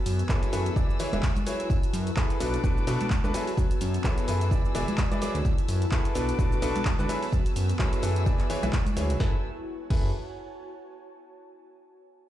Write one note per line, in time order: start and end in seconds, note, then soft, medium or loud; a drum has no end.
0.00 1.15 F#4 medium
0.00 0.74 B4 medium
0.00 0.75 G#5 medium
0.00 0.74 A5 medium
0.00 2.37 E6 medium
0.06 0.24 F#2 medium
0.06 open hi-hat loud
0.06 tambourine loud
0.06 shaker medium
0.13 1.15 C#6 medium
0.19 closed hi-hat medium
0.19 tambourine soft
0.19 shaker soft
0.29 0.39 F#2 medium
0.29 0.50 F#3 medium
0.29 0.50 E4 medium
0.29 0.50 G#4 medium
0.29 0.50 A4 medium
0.29 0.50 B4 loud
0.29 kick loud
0.29 clap loud
0.29 tambourine medium
0.29 shaker soft
0.42 closed hi-hat medium
0.42 tambourine soft
0.42 shaker soft
0.52 0.70 F#2 medium
0.52 0.74 E3 medium
0.52 0.74 E4 medium
0.52 0.74 G#4 medium
0.52 0.74 A4 medium
0.52 0.74 B4 medium
0.52 open hi-hat loud
0.52 tambourine loud
0.52 shaker medium
0.66 closed hi-hat medium
0.66 tambourine soft
0.66 shaker soft
0.76 0.97 E3 medium
0.76 1.99 E4 medium
0.76 0.97 E4 medium
0.76 0.97 G#4 medium
0.76 0.97 B4 medium
0.76 1.69 D5 medium
0.76 0.97 D5 medium
0.76 2.39 G#5 medium
0.76 kick loud
0.76 tambourine medium
0.76 shaker soft
0.90 shaker soft
0.95 1.99 F#5 medium
0.95 tambourine loud
1.00 1.10 E3 medium
1.00 1.10 E4 medium
1.00 1.10 G#4 medium
1.00 1.10 B4 medium
1.00 1.10 C#5 loud
1.00 open hi-hat loud
1.00 shaker medium
1.13 1.20 E1 loud
1.13 1.24 E3 medium
1.13 1.24 E4 medium
1.13 1.24 G#4 medium
1.13 1.24 B4 medium
1.13 1.24 E5 loud
1.13 closed hi-hat medium
1.13 tambourine soft
1.13 high conga medium
1.13 shaker soft
1.23 kick loud
1.23 clap loud
1.23 open hi-hat medium
1.23 tambourine medium
1.23 shaker soft
1.35 closed hi-hat soft
1.35 tambourine soft
1.35 high conga medium
1.35 shaker soft
1.46 1.68 F#3 medium
1.46 1.68 E4 medium
1.46 1.68 G#4 medium
1.46 1.68 B4 medium
1.46 1.68 C#5 medium
1.46 open hi-hat loud
1.46 tambourine loud
1.46 shaker medium
1.59 closed hi-hat medium
1.59 tambourine soft
1.59 shaker soft
1.70 1.79 F#2 medium
1.70 4.90 F#4 medium
1.70 4.48 B4 medium
1.70 4.48 A5 medium
1.70 kick loud
1.70 tambourine medium
1.70 shaker soft
1.83 closed hi-hat medium
1.83 shaker soft
1.93 2.11 F#2 loud
1.93 open hi-hat loud
1.93 tambourine medium
1.93 shaker medium
2.07 closed hi-hat medium
2.07 tambourine soft
2.07 shaker soft
2.17 2.26 F#2 medium
2.17 2.38 E4 medium
2.17 2.38 G#4 medium
2.17 2.38 A4 medium
2.17 2.38 B4 loud
2.17 kick loud
2.17 clap loud
2.17 tambourine medium
2.17 shaker soft
2.30 closed hi-hat medium
2.30 tambourine soft
2.30 shaker soft
2.40 2.58 B1 medium
2.40 2.61 B2 medium
2.40 3.81 B3 medium
2.40 2.61 D4 medium
2.40 2.61 F#4 medium
2.40 2.61 A4 medium
2.40 2.61 B4 loud
2.40 3.33 D6 medium
2.40 open hi-hat loud
2.40 tambourine medium
2.40 shaker medium
2.54 closed hi-hat medium
2.54 tambourine soft
2.54 shaker soft
2.63 2.81 A1 medium
2.63 2.85 B2 medium
2.63 2.85 D4 medium
2.63 2.85 F#4 medium
2.63 2.85 A4 medium
2.63 2.85 B4 medium
2.63 kick loud
2.63 tambourine medium
2.63 shaker soft
2.77 shaker soft
2.87 2.97 B1 medium
2.87 3.08 B2 loud
2.87 3.08 D4 medium
2.87 3.08 F#4 medium
2.87 3.08 A4 medium
2.87 3.08 B4 loud
2.87 open hi-hat loud
2.87 tambourine medium
2.87 shaker medium
3.00 clap soft
3.00 closed hi-hat medium
3.00 tambourine soft
3.00 high conga medium
3.00 shaker soft
3.10 kick loud
3.10 clap loud
3.10 tambourine medium
3.10 shaker soft
3.24 3.31 D2 loud
3.24 3.32 D4 medium
3.24 3.32 F#4 medium
3.24 3.32 A4 medium
3.24 3.32 B4 loud
3.24 tambourine soft
3.24 high conga medium
3.24 shaker soft
3.34 3.48 F#3 medium
3.34 3.48 E4 medium
3.34 3.48 G#4 medium
3.34 3.48 A4 medium
3.34 3.48 B4 loud
3.34 4.50 G#5 medium
3.34 6.13 E6 medium
3.34 open hi-hat loud
3.34 tambourine medium
3.34 shaker medium
3.47 open hi-hat medium
3.47 tambourine soft
3.47 shaker soft
3.57 3.67 F#2 loud
3.57 kick loud
3.57 tambourine soft
3.57 shaker soft
3.71 closed hi-hat medium
3.71 shaker soft
3.81 3.99 F#2 medium
3.81 open hi-hat loud
3.81 tambourine medium
3.81 shaker medium
3.88 4.90 C#6 medium
3.94 closed hi-hat medium
3.94 tambourine soft
3.94 shaker soft
4.04 4.14 F#2 loud
4.04 4.25 F#3 loud
4.04 4.25 E4 medium
4.04 4.25 G#4 medium
4.04 4.25 A4 medium
4.04 4.25 B4 loud
4.04 kick loud
4.04 clap loud
4.04 tambourine medium
4.04 shaker soft
4.18 closed hi-hat medium
4.18 tambourine soft
4.18 shaker soft
4.28 4.53 F#2 medium
4.28 4.49 E3 medium
4.28 4.49 E4 medium
4.28 4.49 G#4 medium
4.28 4.49 A4 medium
4.28 4.49 B4 medium
4.28 open hi-hat loud
4.28 tambourine medium
4.28 shaker medium
4.41 closed hi-hat medium
4.41 tambourine soft
4.41 shaker soft
4.51 4.61 E2 loud
4.51 4.72 E3 medium
4.51 5.74 E4 medium
4.51 4.72 E4 medium
4.51 4.72 G#4 medium
4.51 4.72 B4 medium
4.51 5.44 D5 medium
4.51 4.72 D5 medium
4.51 5.44 G#5 medium
4.51 kick loud
4.51 tambourine soft
4.51 shaker soft
4.65 shaker soft
4.75 4.84 E1 loud
4.75 4.96 E3 loud
4.75 4.96 E4 medium
4.75 4.96 G#4 medium
4.75 4.96 B4 medium
4.75 4.96 D5 loud
4.75 open hi-hat loud
4.75 tambourine medium
4.75 shaker medium
4.88 closed hi-hat medium
4.88 tambourine soft
4.88 high conga loud
4.88 shaker soft
4.98 kick loud
4.98 clap loud
4.98 open hi-hat medium
4.98 tambourine medium
4.98 shaker soft
5.11 5.19 E3 medium
5.11 5.19 E4 medium
5.11 5.19 G#4 medium
5.11 5.19 B4 medium
5.11 5.19 D5 loud
5.11 closed hi-hat soft
5.11 tambourine soft
5.11 high conga medium
5.11 shaker soft
5.21 5.36 F#3 medium
5.21 5.36 E4 medium
5.21 5.36 G#4 medium
5.21 5.36 B4 medium
5.21 5.36 D5 loud
5.21 open hi-hat loud
5.21 tambourine medium
5.21 shaker medium
5.35 5.42 D2 medium
5.35 closed hi-hat medium
5.35 tambourine soft
5.35 shaker soft
5.45 5.54 F#2 loud
5.45 8.65 F#4 medium
5.45 8.23 B4 medium
5.45 6.15 G#5 medium
5.45 8.23 A5 medium
5.45 kick loud
5.45 tambourine soft
5.45 shaker soft
5.58 closed hi-hat medium
5.58 shaker soft
5.68 5.86 F#2 loud
5.68 open hi-hat loud
5.68 tambourine medium
5.68 shaker medium
5.82 closed hi-hat medium
5.82 tambourine soft
5.82 shaker soft
5.91 6.01 F#2 loud
5.91 6.13 E4 loud
5.91 6.13 G#4 medium
5.91 6.13 A4 medium
5.91 6.13 B4 loud
5.91 kick loud
5.91 clap loud
5.91 tambourine soft
5.91 shaker soft
6.05 closed hi-hat medium
6.05 tambourine soft
6.05 shaker soft
6.15 6.33 B1 medium
6.15 6.36 B2 medium
6.15 7.56 B3 medium
6.15 6.36 D4 medium
6.15 6.36 F#4 medium
6.15 6.36 A4 medium
6.15 6.36 B4 medium
6.15 7.08 D6 medium
6.15 open hi-hat loud
6.15 tambourine loud
6.15 shaker medium
6.29 closed hi-hat medium
6.29 tambourine soft
6.29 shaker soft
6.39 6.56 A1 medium
6.39 6.60 B2 medium
6.39 6.60 D4 medium
6.39 6.60 F#4 medium
6.39 6.60 A4 medium
6.39 6.60 B4 loud
6.39 kick loud
6.39 tambourine medium
6.39 shaker soft
6.52 shaker soft
6.62 6.72 B1 medium
6.62 6.83 B2 loud
6.62 6.83 D4 medium
6.62 6.83 F#4 medium
6.62 6.83 A4 medium
6.62 6.83 B4 loud
6.62 open hi-hat loud
6.62 tambourine medium
6.62 shaker medium
6.75 clap soft
6.75 closed hi-hat medium
6.75 tambourine soft
6.75 high conga medium
6.75 shaker soft
6.85 kick loud
6.85 clap loud
6.85 tambourine medium
6.85 shaker soft
6.99 7.06 D2 loud
6.99 7.07 D4 medium
6.99 7.07 F#4 medium
6.99 7.07 A4 medium
6.99 7.07 B4 loud
6.99 tambourine soft
6.99 high conga medium
6.99 shaker soft
7.09 7.23 F#3 medium
7.09 7.23 E4 medium
7.09 7.23 G#4 medium
7.09 7.23 A4 medium
7.09 7.23 B4 loud
7.09 9.18 G#5 medium
7.09 9.18 E6 medium
7.09 open hi-hat loud
7.09 tambourine medium
7.09 shaker medium
7.23 open hi-hat medium
7.23 tambourine soft
7.23 shaker soft
7.32 7.42 F#2 loud
7.32 kick loud
7.32 tambourine soft
7.32 shaker soft
7.45 closed hi-hat medium
7.45 tambourine soft
7.45 shaker soft
7.56 7.74 F#2 medium
7.56 open hi-hat loud
7.56 tambourine medium
7.56 shaker medium
7.63 8.65 C#6 medium
7.69 closed hi-hat medium
7.69 tambourine soft
7.69 shaker soft
7.79 7.89 F#2 medium
7.79 8.00 F#3 loud
7.79 8.00 E4 medium
7.79 8.00 G#4 medium
7.79 8.00 A4 medium
7.79 8.00 B4 loud
7.79 kick loud
7.79 clap loud
7.79 tambourine medium
7.79 shaker soft
7.92 closed hi-hat medium
7.92 tambourine soft
7.92 shaker soft
8.02 8.28 F#2 medium
8.02 8.24 E3 medium
8.02 8.24 E4 medium
8.02 8.24 G#4 medium
8.02 8.24 A4 medium
8.02 8.24 B4 medium
8.02 open hi-hat loud
8.02 tambourine medium
8.02 shaker medium
8.16 closed hi-hat medium
8.16 tambourine soft
8.16 shaker soft
8.26 8.36 E2 medium
8.26 8.47 E3 medium
8.26 8.47 E4 medium
8.26 8.47 G#4 medium
8.26 8.47 B4 medium
8.26 8.47 D5 medium
8.26 9.19 D5 medium
8.26 kick loud
8.26 tambourine medium
8.26 shaker soft
8.39 clap soft
8.39 closed hi-hat soft
8.39 shaker soft
8.50 8.60 E3 medium
8.50 8.60 E4 medium
8.50 8.60 G#4 medium
8.50 8.60 B4 medium
8.50 8.60 C#5 loud
8.50 open hi-hat loud
8.50 tambourine medium
8.50 shaker medium
8.63 8.70 B1 medium
8.63 8.74 E3 medium
8.63 8.74 E4 medium
8.63 8.74 G#4 medium
8.63 8.74 B4 medium
8.63 8.74 E5 loud
8.63 closed hi-hat medium
8.63 tambourine soft
8.63 high conga medium
8.63 shaker soft
8.73 kick loud
8.73 clap loud
8.73 open hi-hat medium
8.73 tambourine medium
8.73 shaker soft
8.86 closed hi-hat soft
8.86 tambourine soft
8.86 high conga loud
8.86 shaker soft
8.96 9.11 D2 medium
8.96 9.18 F#3 medium
8.96 9.18 E4 medium
8.96 9.18 G#4 medium
8.96 9.18 B4 medium
8.96 9.18 C#5 medium
8.96 open hi-hat loud
8.96 tambourine medium
8.96 shaker medium
9.10 9.17 B1 loud
9.10 closed hi-hat medium
9.10 tambourine soft
9.10 shaker soft
9.20 9.34 F#2 medium
9.20 9.34 E4 medium
9.20 11.04 F#4 medium
9.20 9.34 G#4 medium
9.20 9.34 A4 medium
9.20 9.34 B4 loud
9.20 9.42 B4 medium
9.20 9.42 G#5 medium
9.20 9.42 A5 medium
9.20 9.42 E6 medium
9.20 kick loud
9.20 snare medium
9.28 11.04 C#5 medium
9.36 11.04 G#5 medium
9.42 11.04 A5 medium
9.90 10.12 F#2 medium
9.90 10.08 E4 medium
9.90 10.08 G#4 medium
9.90 10.08 A4 medium
9.90 10.08 B4 loud
9.90 kick loud
9.90 crash medium